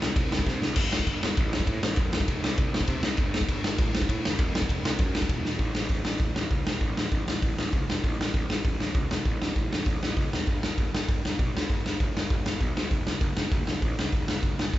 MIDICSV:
0, 0, Header, 1, 3, 480
1, 0, Start_track
1, 0, Tempo, 302115
1, 1228, Time_signature, 4, 2, 24, 8
1, 9386, Tempo, 304723
1, 23371, End_track
2, 0, Start_track
2, 0, Title_t, "Picked electric bass"
2, 0, Program_c, 0, 34
2, 27, Note_on_c, 0, 36, 99
2, 218, Note_off_c, 0, 36, 0
2, 253, Note_on_c, 0, 36, 99
2, 640, Note_off_c, 0, 36, 0
2, 737, Note_on_c, 0, 48, 101
2, 932, Note_off_c, 0, 48, 0
2, 985, Note_on_c, 0, 36, 96
2, 1177, Note_off_c, 0, 36, 0
2, 1213, Note_on_c, 0, 31, 94
2, 1600, Note_off_c, 0, 31, 0
2, 1697, Note_on_c, 0, 31, 87
2, 1892, Note_off_c, 0, 31, 0
2, 1944, Note_on_c, 0, 31, 91
2, 2136, Note_off_c, 0, 31, 0
2, 2186, Note_on_c, 0, 33, 98
2, 2568, Note_off_c, 0, 33, 0
2, 2659, Note_on_c, 0, 45, 109
2, 2853, Note_off_c, 0, 45, 0
2, 2902, Note_on_c, 0, 33, 96
2, 3095, Note_off_c, 0, 33, 0
2, 3133, Note_on_c, 0, 29, 99
2, 3520, Note_off_c, 0, 29, 0
2, 3624, Note_on_c, 0, 29, 95
2, 3816, Note_off_c, 0, 29, 0
2, 3854, Note_on_c, 0, 36, 96
2, 4050, Note_off_c, 0, 36, 0
2, 4103, Note_on_c, 0, 36, 104
2, 4486, Note_off_c, 0, 36, 0
2, 4576, Note_on_c, 0, 48, 106
2, 4771, Note_off_c, 0, 48, 0
2, 4807, Note_on_c, 0, 36, 102
2, 5006, Note_off_c, 0, 36, 0
2, 5059, Note_on_c, 0, 31, 105
2, 5442, Note_off_c, 0, 31, 0
2, 5543, Note_on_c, 0, 31, 91
2, 5734, Note_off_c, 0, 31, 0
2, 5767, Note_on_c, 0, 31, 94
2, 6021, Note_off_c, 0, 31, 0
2, 6021, Note_on_c, 0, 33, 101
2, 6403, Note_off_c, 0, 33, 0
2, 6498, Note_on_c, 0, 45, 104
2, 6691, Note_off_c, 0, 45, 0
2, 6738, Note_on_c, 0, 30, 98
2, 6931, Note_off_c, 0, 30, 0
2, 6971, Note_on_c, 0, 29, 100
2, 7357, Note_off_c, 0, 29, 0
2, 7463, Note_on_c, 0, 29, 94
2, 7654, Note_off_c, 0, 29, 0
2, 7706, Note_on_c, 0, 36, 92
2, 7895, Note_off_c, 0, 36, 0
2, 7924, Note_on_c, 0, 42, 97
2, 8313, Note_off_c, 0, 42, 0
2, 8406, Note_on_c, 0, 28, 96
2, 8604, Note_off_c, 0, 28, 0
2, 8656, Note_on_c, 0, 28, 89
2, 8850, Note_off_c, 0, 28, 0
2, 8883, Note_on_c, 0, 33, 89
2, 9055, Note_off_c, 0, 33, 0
2, 9140, Note_on_c, 0, 33, 77
2, 9307, Note_off_c, 0, 33, 0
2, 9369, Note_on_c, 0, 33, 80
2, 9539, Note_off_c, 0, 33, 0
2, 9623, Note_on_c, 0, 33, 81
2, 9788, Note_off_c, 0, 33, 0
2, 9839, Note_on_c, 0, 33, 85
2, 10012, Note_off_c, 0, 33, 0
2, 10074, Note_on_c, 0, 33, 85
2, 10248, Note_off_c, 0, 33, 0
2, 10338, Note_on_c, 0, 37, 88
2, 10504, Note_off_c, 0, 37, 0
2, 10587, Note_on_c, 0, 28, 82
2, 10750, Note_off_c, 0, 28, 0
2, 10814, Note_on_c, 0, 33, 93
2, 10981, Note_off_c, 0, 33, 0
2, 11041, Note_on_c, 0, 33, 75
2, 11212, Note_off_c, 0, 33, 0
2, 11295, Note_on_c, 0, 33, 87
2, 11461, Note_off_c, 0, 33, 0
2, 11533, Note_on_c, 0, 33, 81
2, 11700, Note_off_c, 0, 33, 0
2, 11772, Note_on_c, 0, 33, 82
2, 11940, Note_off_c, 0, 33, 0
2, 12007, Note_on_c, 0, 33, 81
2, 12176, Note_off_c, 0, 33, 0
2, 12255, Note_on_c, 0, 37, 89
2, 12421, Note_off_c, 0, 37, 0
2, 12483, Note_on_c, 0, 28, 87
2, 12654, Note_off_c, 0, 28, 0
2, 12741, Note_on_c, 0, 33, 80
2, 12905, Note_off_c, 0, 33, 0
2, 12986, Note_on_c, 0, 33, 78
2, 13148, Note_off_c, 0, 33, 0
2, 13218, Note_on_c, 0, 33, 83
2, 13383, Note_off_c, 0, 33, 0
2, 13465, Note_on_c, 0, 33, 86
2, 13628, Note_off_c, 0, 33, 0
2, 13700, Note_on_c, 0, 33, 85
2, 13864, Note_off_c, 0, 33, 0
2, 13927, Note_on_c, 0, 33, 85
2, 14096, Note_off_c, 0, 33, 0
2, 14175, Note_on_c, 0, 37, 96
2, 14341, Note_off_c, 0, 37, 0
2, 14419, Note_on_c, 0, 28, 83
2, 14583, Note_off_c, 0, 28, 0
2, 14657, Note_on_c, 0, 33, 82
2, 14823, Note_off_c, 0, 33, 0
2, 14918, Note_on_c, 0, 33, 72
2, 15076, Note_off_c, 0, 33, 0
2, 15134, Note_on_c, 0, 33, 81
2, 15300, Note_off_c, 0, 33, 0
2, 15371, Note_on_c, 0, 33, 86
2, 15539, Note_off_c, 0, 33, 0
2, 15617, Note_on_c, 0, 33, 80
2, 15783, Note_off_c, 0, 33, 0
2, 15863, Note_on_c, 0, 33, 80
2, 16027, Note_off_c, 0, 33, 0
2, 16105, Note_on_c, 0, 37, 90
2, 16267, Note_off_c, 0, 37, 0
2, 16328, Note_on_c, 0, 28, 89
2, 16497, Note_off_c, 0, 28, 0
2, 16580, Note_on_c, 0, 31, 86
2, 16745, Note_off_c, 0, 31, 0
2, 16815, Note_on_c, 0, 31, 73
2, 16981, Note_off_c, 0, 31, 0
2, 17053, Note_on_c, 0, 31, 83
2, 17220, Note_off_c, 0, 31, 0
2, 17294, Note_on_c, 0, 31, 78
2, 17461, Note_off_c, 0, 31, 0
2, 17542, Note_on_c, 0, 31, 86
2, 17706, Note_off_c, 0, 31, 0
2, 17788, Note_on_c, 0, 31, 78
2, 17950, Note_off_c, 0, 31, 0
2, 18024, Note_on_c, 0, 35, 87
2, 18187, Note_off_c, 0, 35, 0
2, 18267, Note_on_c, 0, 38, 87
2, 18429, Note_off_c, 0, 38, 0
2, 18509, Note_on_c, 0, 31, 90
2, 18671, Note_off_c, 0, 31, 0
2, 18761, Note_on_c, 0, 31, 76
2, 18919, Note_off_c, 0, 31, 0
2, 18994, Note_on_c, 0, 31, 89
2, 19154, Note_off_c, 0, 31, 0
2, 19239, Note_on_c, 0, 31, 88
2, 19398, Note_off_c, 0, 31, 0
2, 19461, Note_on_c, 0, 31, 90
2, 19626, Note_off_c, 0, 31, 0
2, 19715, Note_on_c, 0, 31, 86
2, 19875, Note_off_c, 0, 31, 0
2, 19945, Note_on_c, 0, 35, 89
2, 20109, Note_off_c, 0, 35, 0
2, 20171, Note_on_c, 0, 38, 86
2, 20339, Note_off_c, 0, 38, 0
2, 20424, Note_on_c, 0, 30, 90
2, 20588, Note_off_c, 0, 30, 0
2, 20659, Note_on_c, 0, 30, 77
2, 20825, Note_off_c, 0, 30, 0
2, 20889, Note_on_c, 0, 30, 85
2, 21058, Note_off_c, 0, 30, 0
2, 21126, Note_on_c, 0, 30, 85
2, 21296, Note_off_c, 0, 30, 0
2, 21367, Note_on_c, 0, 30, 93
2, 21537, Note_off_c, 0, 30, 0
2, 21618, Note_on_c, 0, 30, 83
2, 21784, Note_off_c, 0, 30, 0
2, 21848, Note_on_c, 0, 33, 87
2, 22017, Note_off_c, 0, 33, 0
2, 22104, Note_on_c, 0, 37, 87
2, 22268, Note_off_c, 0, 37, 0
2, 22338, Note_on_c, 0, 30, 93
2, 22504, Note_off_c, 0, 30, 0
2, 22585, Note_on_c, 0, 30, 82
2, 22749, Note_off_c, 0, 30, 0
2, 22804, Note_on_c, 0, 30, 88
2, 22975, Note_off_c, 0, 30, 0
2, 23066, Note_on_c, 0, 30, 80
2, 23229, Note_off_c, 0, 30, 0
2, 23290, Note_on_c, 0, 30, 81
2, 23371, Note_off_c, 0, 30, 0
2, 23371, End_track
3, 0, Start_track
3, 0, Title_t, "Drums"
3, 34, Note_on_c, 9, 38, 123
3, 193, Note_off_c, 9, 38, 0
3, 256, Note_on_c, 9, 36, 121
3, 257, Note_on_c, 9, 51, 89
3, 415, Note_off_c, 9, 36, 0
3, 415, Note_off_c, 9, 51, 0
3, 511, Note_on_c, 9, 38, 114
3, 619, Note_on_c, 9, 36, 94
3, 670, Note_off_c, 9, 38, 0
3, 739, Note_off_c, 9, 36, 0
3, 739, Note_on_c, 9, 36, 97
3, 759, Note_on_c, 9, 38, 68
3, 898, Note_off_c, 9, 36, 0
3, 918, Note_off_c, 9, 38, 0
3, 988, Note_on_c, 9, 38, 103
3, 1146, Note_off_c, 9, 38, 0
3, 1203, Note_on_c, 9, 49, 108
3, 1203, Note_on_c, 9, 51, 85
3, 1215, Note_on_c, 9, 36, 118
3, 1361, Note_off_c, 9, 49, 0
3, 1361, Note_off_c, 9, 51, 0
3, 1374, Note_off_c, 9, 36, 0
3, 1468, Note_on_c, 9, 38, 127
3, 1576, Note_on_c, 9, 36, 91
3, 1627, Note_off_c, 9, 38, 0
3, 1697, Note_on_c, 9, 51, 83
3, 1698, Note_off_c, 9, 36, 0
3, 1698, Note_on_c, 9, 36, 95
3, 1856, Note_off_c, 9, 51, 0
3, 1857, Note_off_c, 9, 36, 0
3, 1954, Note_on_c, 9, 38, 126
3, 2113, Note_off_c, 9, 38, 0
3, 2176, Note_on_c, 9, 51, 84
3, 2183, Note_on_c, 9, 36, 122
3, 2335, Note_off_c, 9, 51, 0
3, 2342, Note_off_c, 9, 36, 0
3, 2431, Note_on_c, 9, 38, 106
3, 2537, Note_on_c, 9, 36, 96
3, 2590, Note_off_c, 9, 38, 0
3, 2652, Note_on_c, 9, 51, 76
3, 2655, Note_off_c, 9, 36, 0
3, 2655, Note_on_c, 9, 36, 101
3, 2811, Note_off_c, 9, 51, 0
3, 2814, Note_off_c, 9, 36, 0
3, 2908, Note_on_c, 9, 38, 127
3, 3067, Note_off_c, 9, 38, 0
3, 3115, Note_on_c, 9, 51, 80
3, 3135, Note_on_c, 9, 36, 122
3, 3274, Note_off_c, 9, 51, 0
3, 3294, Note_off_c, 9, 36, 0
3, 3384, Note_on_c, 9, 38, 124
3, 3501, Note_on_c, 9, 36, 94
3, 3542, Note_off_c, 9, 38, 0
3, 3622, Note_on_c, 9, 51, 80
3, 3623, Note_off_c, 9, 36, 0
3, 3623, Note_on_c, 9, 36, 95
3, 3781, Note_off_c, 9, 51, 0
3, 3782, Note_off_c, 9, 36, 0
3, 3876, Note_on_c, 9, 38, 121
3, 4035, Note_off_c, 9, 38, 0
3, 4091, Note_on_c, 9, 51, 89
3, 4100, Note_on_c, 9, 36, 120
3, 4250, Note_off_c, 9, 51, 0
3, 4259, Note_off_c, 9, 36, 0
3, 4359, Note_on_c, 9, 38, 114
3, 4458, Note_on_c, 9, 36, 102
3, 4517, Note_off_c, 9, 38, 0
3, 4566, Note_on_c, 9, 51, 87
3, 4576, Note_off_c, 9, 36, 0
3, 4576, Note_on_c, 9, 36, 100
3, 4725, Note_off_c, 9, 51, 0
3, 4735, Note_off_c, 9, 36, 0
3, 4813, Note_on_c, 9, 38, 126
3, 4972, Note_off_c, 9, 38, 0
3, 5039, Note_on_c, 9, 51, 81
3, 5055, Note_on_c, 9, 36, 114
3, 5197, Note_off_c, 9, 51, 0
3, 5214, Note_off_c, 9, 36, 0
3, 5308, Note_on_c, 9, 38, 121
3, 5420, Note_on_c, 9, 36, 95
3, 5467, Note_off_c, 9, 38, 0
3, 5537, Note_on_c, 9, 51, 88
3, 5538, Note_off_c, 9, 36, 0
3, 5538, Note_on_c, 9, 36, 107
3, 5696, Note_off_c, 9, 51, 0
3, 5697, Note_off_c, 9, 36, 0
3, 5788, Note_on_c, 9, 38, 127
3, 5947, Note_off_c, 9, 38, 0
3, 6008, Note_on_c, 9, 51, 87
3, 6016, Note_on_c, 9, 36, 125
3, 6167, Note_off_c, 9, 51, 0
3, 6175, Note_off_c, 9, 36, 0
3, 6270, Note_on_c, 9, 38, 114
3, 6378, Note_on_c, 9, 36, 98
3, 6429, Note_off_c, 9, 38, 0
3, 6500, Note_off_c, 9, 36, 0
3, 6500, Note_on_c, 9, 36, 99
3, 6503, Note_on_c, 9, 51, 86
3, 6659, Note_off_c, 9, 36, 0
3, 6662, Note_off_c, 9, 51, 0
3, 6758, Note_on_c, 9, 38, 121
3, 6917, Note_off_c, 9, 38, 0
3, 6969, Note_on_c, 9, 51, 78
3, 6975, Note_on_c, 9, 36, 115
3, 7128, Note_off_c, 9, 51, 0
3, 7134, Note_off_c, 9, 36, 0
3, 7232, Note_on_c, 9, 38, 122
3, 7337, Note_on_c, 9, 36, 94
3, 7391, Note_off_c, 9, 38, 0
3, 7458, Note_off_c, 9, 36, 0
3, 7458, Note_on_c, 9, 36, 104
3, 7467, Note_on_c, 9, 51, 82
3, 7616, Note_off_c, 9, 36, 0
3, 7626, Note_off_c, 9, 51, 0
3, 7710, Note_on_c, 9, 38, 127
3, 7869, Note_off_c, 9, 38, 0
3, 7922, Note_on_c, 9, 51, 86
3, 7933, Note_on_c, 9, 36, 127
3, 8080, Note_off_c, 9, 51, 0
3, 8092, Note_off_c, 9, 36, 0
3, 8181, Note_on_c, 9, 38, 112
3, 8293, Note_on_c, 9, 36, 100
3, 8340, Note_off_c, 9, 38, 0
3, 8409, Note_on_c, 9, 51, 78
3, 8410, Note_off_c, 9, 36, 0
3, 8410, Note_on_c, 9, 36, 101
3, 8568, Note_off_c, 9, 36, 0
3, 8568, Note_off_c, 9, 51, 0
3, 8664, Note_on_c, 9, 38, 76
3, 8823, Note_off_c, 9, 38, 0
3, 8877, Note_on_c, 9, 46, 52
3, 8885, Note_on_c, 9, 36, 95
3, 9035, Note_off_c, 9, 46, 0
3, 9044, Note_off_c, 9, 36, 0
3, 9133, Note_on_c, 9, 38, 105
3, 9292, Note_off_c, 9, 38, 0
3, 9353, Note_on_c, 9, 46, 59
3, 9365, Note_on_c, 9, 36, 100
3, 9511, Note_off_c, 9, 46, 0
3, 9523, Note_off_c, 9, 36, 0
3, 9607, Note_on_c, 9, 38, 106
3, 9764, Note_off_c, 9, 38, 0
3, 9821, Note_on_c, 9, 46, 57
3, 9843, Note_on_c, 9, 36, 110
3, 9978, Note_off_c, 9, 46, 0
3, 10000, Note_off_c, 9, 36, 0
3, 10098, Note_on_c, 9, 38, 99
3, 10255, Note_off_c, 9, 38, 0
3, 10331, Note_on_c, 9, 36, 105
3, 10332, Note_on_c, 9, 46, 51
3, 10488, Note_off_c, 9, 36, 0
3, 10490, Note_off_c, 9, 46, 0
3, 10582, Note_on_c, 9, 38, 112
3, 10740, Note_off_c, 9, 38, 0
3, 10800, Note_on_c, 9, 46, 49
3, 10808, Note_on_c, 9, 36, 97
3, 10957, Note_off_c, 9, 46, 0
3, 10966, Note_off_c, 9, 36, 0
3, 11066, Note_on_c, 9, 38, 102
3, 11223, Note_off_c, 9, 38, 0
3, 11292, Note_on_c, 9, 46, 48
3, 11293, Note_on_c, 9, 36, 102
3, 11450, Note_off_c, 9, 36, 0
3, 11450, Note_off_c, 9, 46, 0
3, 11547, Note_on_c, 9, 38, 113
3, 11704, Note_off_c, 9, 38, 0
3, 11774, Note_on_c, 9, 46, 58
3, 11775, Note_on_c, 9, 36, 108
3, 11932, Note_off_c, 9, 36, 0
3, 11932, Note_off_c, 9, 46, 0
3, 12028, Note_on_c, 9, 38, 97
3, 12186, Note_off_c, 9, 38, 0
3, 12244, Note_on_c, 9, 46, 53
3, 12255, Note_on_c, 9, 36, 101
3, 12402, Note_off_c, 9, 46, 0
3, 12413, Note_off_c, 9, 36, 0
3, 12521, Note_on_c, 9, 38, 112
3, 12679, Note_off_c, 9, 38, 0
3, 12742, Note_on_c, 9, 36, 99
3, 12750, Note_on_c, 9, 46, 51
3, 12900, Note_off_c, 9, 36, 0
3, 12907, Note_off_c, 9, 46, 0
3, 13010, Note_on_c, 9, 38, 108
3, 13168, Note_off_c, 9, 38, 0
3, 13217, Note_on_c, 9, 46, 55
3, 13219, Note_on_c, 9, 36, 101
3, 13374, Note_off_c, 9, 46, 0
3, 13377, Note_off_c, 9, 36, 0
3, 13468, Note_on_c, 9, 38, 115
3, 13626, Note_off_c, 9, 38, 0
3, 13701, Note_on_c, 9, 36, 111
3, 13706, Note_on_c, 9, 46, 61
3, 13858, Note_off_c, 9, 36, 0
3, 13863, Note_off_c, 9, 46, 0
3, 13948, Note_on_c, 9, 38, 92
3, 14105, Note_off_c, 9, 38, 0
3, 14165, Note_on_c, 9, 46, 51
3, 14175, Note_on_c, 9, 36, 110
3, 14323, Note_off_c, 9, 46, 0
3, 14333, Note_off_c, 9, 36, 0
3, 14430, Note_on_c, 9, 38, 119
3, 14588, Note_off_c, 9, 38, 0
3, 14653, Note_on_c, 9, 46, 47
3, 14659, Note_on_c, 9, 36, 104
3, 14811, Note_off_c, 9, 46, 0
3, 14816, Note_off_c, 9, 36, 0
3, 14913, Note_on_c, 9, 38, 100
3, 15070, Note_off_c, 9, 38, 0
3, 15137, Note_on_c, 9, 46, 50
3, 15140, Note_on_c, 9, 36, 102
3, 15295, Note_off_c, 9, 46, 0
3, 15297, Note_off_c, 9, 36, 0
3, 15401, Note_on_c, 9, 38, 109
3, 15558, Note_off_c, 9, 38, 0
3, 15603, Note_on_c, 9, 46, 53
3, 15615, Note_on_c, 9, 36, 102
3, 15760, Note_off_c, 9, 46, 0
3, 15773, Note_off_c, 9, 36, 0
3, 15876, Note_on_c, 9, 38, 95
3, 16033, Note_off_c, 9, 38, 0
3, 16095, Note_on_c, 9, 46, 55
3, 16098, Note_on_c, 9, 36, 102
3, 16253, Note_off_c, 9, 46, 0
3, 16256, Note_off_c, 9, 36, 0
3, 16357, Note_on_c, 9, 38, 103
3, 16515, Note_off_c, 9, 38, 0
3, 16570, Note_on_c, 9, 46, 52
3, 16577, Note_on_c, 9, 36, 104
3, 16727, Note_off_c, 9, 46, 0
3, 16735, Note_off_c, 9, 36, 0
3, 16827, Note_on_c, 9, 38, 110
3, 16985, Note_off_c, 9, 38, 0
3, 17060, Note_on_c, 9, 36, 107
3, 17062, Note_on_c, 9, 46, 53
3, 17217, Note_off_c, 9, 36, 0
3, 17220, Note_off_c, 9, 46, 0
3, 17322, Note_on_c, 9, 38, 106
3, 17479, Note_off_c, 9, 38, 0
3, 17543, Note_on_c, 9, 36, 114
3, 17544, Note_on_c, 9, 46, 56
3, 17700, Note_off_c, 9, 36, 0
3, 17701, Note_off_c, 9, 46, 0
3, 17804, Note_on_c, 9, 38, 101
3, 17962, Note_off_c, 9, 38, 0
3, 18026, Note_on_c, 9, 36, 107
3, 18027, Note_on_c, 9, 46, 54
3, 18184, Note_off_c, 9, 36, 0
3, 18185, Note_off_c, 9, 46, 0
3, 18299, Note_on_c, 9, 38, 104
3, 18457, Note_off_c, 9, 38, 0
3, 18506, Note_on_c, 9, 36, 103
3, 18516, Note_on_c, 9, 46, 53
3, 18664, Note_off_c, 9, 36, 0
3, 18674, Note_off_c, 9, 46, 0
3, 18760, Note_on_c, 9, 38, 101
3, 18918, Note_off_c, 9, 38, 0
3, 18986, Note_on_c, 9, 36, 112
3, 18993, Note_on_c, 9, 46, 52
3, 19144, Note_off_c, 9, 36, 0
3, 19150, Note_off_c, 9, 46, 0
3, 19247, Note_on_c, 9, 38, 107
3, 19404, Note_off_c, 9, 38, 0
3, 19461, Note_on_c, 9, 46, 55
3, 19462, Note_on_c, 9, 36, 116
3, 19619, Note_off_c, 9, 36, 0
3, 19619, Note_off_c, 9, 46, 0
3, 19706, Note_on_c, 9, 38, 105
3, 19864, Note_off_c, 9, 38, 0
3, 19935, Note_on_c, 9, 46, 50
3, 19938, Note_on_c, 9, 36, 99
3, 20092, Note_off_c, 9, 46, 0
3, 20096, Note_off_c, 9, 36, 0
3, 20195, Note_on_c, 9, 38, 105
3, 20353, Note_off_c, 9, 38, 0
3, 20416, Note_on_c, 9, 46, 54
3, 20417, Note_on_c, 9, 36, 110
3, 20573, Note_off_c, 9, 46, 0
3, 20574, Note_off_c, 9, 36, 0
3, 20664, Note_on_c, 9, 38, 108
3, 20822, Note_off_c, 9, 38, 0
3, 20882, Note_on_c, 9, 46, 55
3, 20891, Note_on_c, 9, 36, 106
3, 21039, Note_off_c, 9, 46, 0
3, 21048, Note_off_c, 9, 36, 0
3, 21136, Note_on_c, 9, 38, 110
3, 21293, Note_off_c, 9, 38, 0
3, 21371, Note_on_c, 9, 36, 118
3, 21371, Note_on_c, 9, 46, 63
3, 21529, Note_off_c, 9, 36, 0
3, 21529, Note_off_c, 9, 46, 0
3, 21617, Note_on_c, 9, 38, 95
3, 21774, Note_off_c, 9, 38, 0
3, 21853, Note_on_c, 9, 36, 105
3, 21854, Note_on_c, 9, 46, 59
3, 22011, Note_off_c, 9, 36, 0
3, 22012, Note_off_c, 9, 46, 0
3, 22114, Note_on_c, 9, 38, 110
3, 22272, Note_off_c, 9, 38, 0
3, 22323, Note_on_c, 9, 46, 55
3, 22331, Note_on_c, 9, 36, 101
3, 22480, Note_off_c, 9, 46, 0
3, 22488, Note_off_c, 9, 36, 0
3, 22578, Note_on_c, 9, 38, 113
3, 22736, Note_off_c, 9, 38, 0
3, 22801, Note_on_c, 9, 46, 52
3, 22810, Note_on_c, 9, 36, 102
3, 22959, Note_off_c, 9, 46, 0
3, 22967, Note_off_c, 9, 36, 0
3, 23068, Note_on_c, 9, 38, 107
3, 23225, Note_off_c, 9, 38, 0
3, 23287, Note_on_c, 9, 46, 56
3, 23291, Note_on_c, 9, 36, 106
3, 23371, Note_off_c, 9, 36, 0
3, 23371, Note_off_c, 9, 46, 0
3, 23371, End_track
0, 0, End_of_file